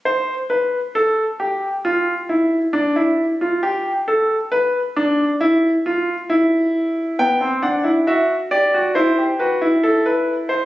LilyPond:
\new Staff \with { instrumentName = "Grand piano" } { \time 4/4 \key c \major \tempo 4 = 68 << { c''8 b'8 a'8 g'8 f'8 e'8 d'16 e'8 f'16 | g'8 a'8 b'8 d'8 e'8 f'8 e'4 | g''8 fis''8 e''8 d''8 c''8 b'8 a'16 b'8 c''16 | } \\ { r1 | r1 | b16 c'16 d'16 e'16 fis'8 g'16 fis'16 e'16 g'16 fis'16 e'4~ e'16 | } >> }